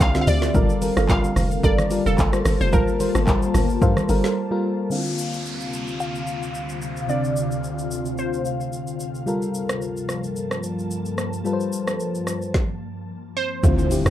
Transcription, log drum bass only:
0, 0, Header, 1, 2, 480
1, 0, Start_track
1, 0, Tempo, 545455
1, 480, Time_signature, 4, 2, 24, 8
1, 12408, End_track
2, 0, Start_track
2, 0, Title_t, "Log drum bass"
2, 0, Program_c, 0, 39
2, 3, Note_on_c, 0, 36, 91
2, 207, Note_off_c, 0, 36, 0
2, 239, Note_on_c, 0, 38, 95
2, 445, Note_off_c, 0, 38, 0
2, 480, Note_on_c, 0, 31, 115
2, 798, Note_off_c, 0, 31, 0
2, 850, Note_on_c, 0, 31, 108
2, 1148, Note_off_c, 0, 31, 0
2, 1199, Note_on_c, 0, 29, 90
2, 1404, Note_off_c, 0, 29, 0
2, 1439, Note_on_c, 0, 31, 102
2, 1757, Note_off_c, 0, 31, 0
2, 1812, Note_on_c, 0, 29, 94
2, 1904, Note_off_c, 0, 29, 0
2, 1922, Note_on_c, 0, 31, 92
2, 2126, Note_off_c, 0, 31, 0
2, 2160, Note_on_c, 0, 31, 93
2, 2273, Note_off_c, 0, 31, 0
2, 2291, Note_on_c, 0, 29, 87
2, 2400, Note_on_c, 0, 31, 113
2, 2414, Note_off_c, 0, 29, 0
2, 2718, Note_off_c, 0, 31, 0
2, 2771, Note_on_c, 0, 31, 105
2, 3069, Note_off_c, 0, 31, 0
2, 3119, Note_on_c, 0, 31, 98
2, 3325, Note_off_c, 0, 31, 0
2, 3359, Note_on_c, 0, 43, 108
2, 3472, Note_off_c, 0, 43, 0
2, 3600, Note_on_c, 0, 31, 101
2, 3712, Note_off_c, 0, 31, 0
2, 12000, Note_on_c, 0, 38, 103
2, 12317, Note_off_c, 0, 38, 0
2, 12370, Note_on_c, 0, 38, 106
2, 12408, Note_off_c, 0, 38, 0
2, 12408, End_track
0, 0, End_of_file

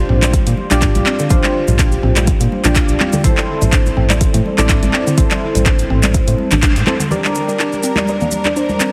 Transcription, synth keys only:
0, 0, Header, 1, 2, 480
1, 0, Start_track
1, 0, Tempo, 483871
1, 1294, Time_signature, 4, 2, 24, 8
1, 8850, End_track
2, 0, Start_track
2, 0, Title_t, "Synth keys"
2, 0, Program_c, 0, 88
2, 0, Note_on_c, 0, 62, 85
2, 0, Note_on_c, 0, 65, 79
2, 0, Note_on_c, 0, 67, 80
2, 0, Note_on_c, 0, 72, 98
2, 672, Note_off_c, 0, 62, 0
2, 672, Note_off_c, 0, 65, 0
2, 672, Note_off_c, 0, 67, 0
2, 672, Note_off_c, 0, 72, 0
2, 704, Note_on_c, 0, 62, 89
2, 704, Note_on_c, 0, 65, 79
2, 705, Note_on_c, 0, 67, 83
2, 705, Note_on_c, 0, 74, 97
2, 1267, Note_off_c, 0, 62, 0
2, 1267, Note_off_c, 0, 65, 0
2, 1267, Note_off_c, 0, 67, 0
2, 1267, Note_off_c, 0, 74, 0
2, 1293, Note_on_c, 0, 65, 81
2, 1294, Note_on_c, 0, 62, 87
2, 1294, Note_on_c, 0, 67, 80
2, 1294, Note_on_c, 0, 72, 96
2, 2593, Note_off_c, 0, 62, 0
2, 2593, Note_off_c, 0, 65, 0
2, 2593, Note_off_c, 0, 67, 0
2, 2593, Note_off_c, 0, 72, 0
2, 2623, Note_on_c, 0, 62, 87
2, 2624, Note_on_c, 0, 65, 83
2, 2624, Note_on_c, 0, 67, 81
2, 2624, Note_on_c, 0, 74, 97
2, 3187, Note_off_c, 0, 62, 0
2, 3187, Note_off_c, 0, 65, 0
2, 3187, Note_off_c, 0, 67, 0
2, 3187, Note_off_c, 0, 74, 0
2, 3213, Note_on_c, 0, 69, 77
2, 3214, Note_on_c, 0, 60, 85
2, 3214, Note_on_c, 0, 64, 80
2, 3214, Note_on_c, 0, 72, 98
2, 4513, Note_off_c, 0, 64, 0
2, 4513, Note_off_c, 0, 69, 0
2, 4513, Note_off_c, 0, 72, 0
2, 4514, Note_off_c, 0, 60, 0
2, 4546, Note_on_c, 0, 60, 91
2, 4546, Note_on_c, 0, 64, 82
2, 4546, Note_on_c, 0, 69, 81
2, 4546, Note_on_c, 0, 74, 97
2, 5108, Note_off_c, 0, 60, 0
2, 5108, Note_off_c, 0, 64, 0
2, 5108, Note_off_c, 0, 69, 0
2, 5108, Note_off_c, 0, 74, 0
2, 5134, Note_on_c, 0, 60, 88
2, 5134, Note_on_c, 0, 64, 79
2, 5134, Note_on_c, 0, 69, 78
2, 5135, Note_on_c, 0, 72, 96
2, 6433, Note_off_c, 0, 60, 0
2, 6433, Note_off_c, 0, 64, 0
2, 6434, Note_off_c, 0, 69, 0
2, 6434, Note_off_c, 0, 72, 0
2, 6815, Note_on_c, 0, 60, 91
2, 6815, Note_on_c, 0, 64, 88
2, 6815, Note_on_c, 0, 72, 101
2, 6816, Note_on_c, 0, 69, 85
2, 6885, Note_off_c, 0, 60, 0
2, 6885, Note_off_c, 0, 64, 0
2, 6885, Note_off_c, 0, 69, 0
2, 6885, Note_off_c, 0, 72, 0
2, 7056, Note_on_c, 0, 70, 66
2, 7057, Note_on_c, 0, 62, 74
2, 7057, Note_on_c, 0, 67, 65
2, 7057, Note_on_c, 0, 74, 80
2, 8850, Note_off_c, 0, 62, 0
2, 8850, Note_off_c, 0, 67, 0
2, 8850, Note_off_c, 0, 70, 0
2, 8850, Note_off_c, 0, 74, 0
2, 8850, End_track
0, 0, End_of_file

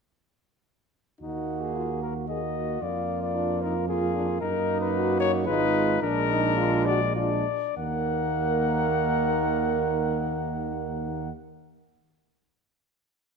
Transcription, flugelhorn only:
0, 0, Header, 1, 2, 480
1, 0, Start_track
1, 0, Key_signature, -6, "minor"
1, 0, Tempo, 534283
1, 1088, Time_signature, 3, 2, 24, 8
1, 4917, Tempo, 552995
1, 5877, Tempo, 598802
1, 11313, End_track
2, 0, Start_track
2, 0, Title_t, "Flugelhorn"
2, 0, Program_c, 0, 56
2, 1084, Note_on_c, 0, 66, 46
2, 2019, Note_off_c, 0, 66, 0
2, 2048, Note_on_c, 0, 66, 41
2, 2531, Note_on_c, 0, 65, 51
2, 2544, Note_off_c, 0, 66, 0
2, 3485, Note_off_c, 0, 65, 0
2, 3490, Note_on_c, 0, 65, 59
2, 3960, Note_on_c, 0, 63, 76
2, 3974, Note_off_c, 0, 65, 0
2, 4920, Note_on_c, 0, 65, 67
2, 4933, Note_off_c, 0, 63, 0
2, 5387, Note_off_c, 0, 65, 0
2, 5392, Note_on_c, 0, 62, 75
2, 6212, Note_off_c, 0, 62, 0
2, 6348, Note_on_c, 0, 62, 61
2, 6584, Note_off_c, 0, 62, 0
2, 6834, Note_on_c, 0, 70, 75
2, 9665, Note_off_c, 0, 70, 0
2, 11313, End_track
0, 0, End_of_file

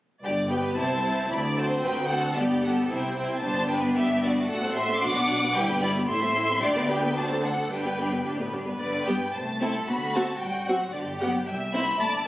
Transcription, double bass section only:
0, 0, Header, 1, 2, 480
1, 0, Start_track
1, 0, Key_signature, 1, "major"
1, 0, Tempo, 532860
1, 204, Time_signature, 2, 2, 24, 8
1, 5961, Tempo, 545455
1, 8361, Tempo, 531444
1, 11006, End_track
2, 0, Start_track
2, 0, Title_t, "Double bass section"
2, 0, Program_c, 0, 48
2, 201, Note_on_c, 0, 31, 54
2, 633, Note_off_c, 0, 31, 0
2, 694, Note_on_c, 0, 36, 46
2, 1120, Note_off_c, 0, 36, 0
2, 1171, Note_on_c, 0, 38, 53
2, 1595, Note_off_c, 0, 38, 0
2, 1643, Note_on_c, 0, 38, 50
2, 2071, Note_off_c, 0, 38, 0
2, 2129, Note_on_c, 0, 31, 55
2, 2556, Note_off_c, 0, 31, 0
2, 2613, Note_on_c, 0, 36, 55
2, 3036, Note_off_c, 0, 36, 0
2, 3087, Note_on_c, 0, 31, 65
2, 3511, Note_off_c, 0, 31, 0
2, 3565, Note_on_c, 0, 31, 59
2, 3986, Note_off_c, 0, 31, 0
2, 4040, Note_on_c, 0, 33, 66
2, 4487, Note_off_c, 0, 33, 0
2, 4519, Note_on_c, 0, 35, 61
2, 5000, Note_off_c, 0, 35, 0
2, 5002, Note_on_c, 0, 31, 67
2, 5481, Note_off_c, 0, 31, 0
2, 5482, Note_on_c, 0, 33, 67
2, 5958, Note_on_c, 0, 38, 68
2, 5960, Note_off_c, 0, 33, 0
2, 6913, Note_on_c, 0, 31, 49
2, 6917, Note_off_c, 0, 38, 0
2, 7690, Note_off_c, 0, 31, 0
2, 7882, Note_on_c, 0, 43, 66
2, 8279, Note_off_c, 0, 43, 0
2, 8362, Note_on_c, 0, 36, 55
2, 8764, Note_off_c, 0, 36, 0
2, 8844, Note_on_c, 0, 38, 65
2, 9244, Note_off_c, 0, 38, 0
2, 9326, Note_on_c, 0, 33, 55
2, 9726, Note_off_c, 0, 33, 0
2, 9802, Note_on_c, 0, 31, 69
2, 10204, Note_off_c, 0, 31, 0
2, 10288, Note_on_c, 0, 36, 56
2, 10687, Note_off_c, 0, 36, 0
2, 10761, Note_on_c, 0, 31, 76
2, 11006, Note_off_c, 0, 31, 0
2, 11006, End_track
0, 0, End_of_file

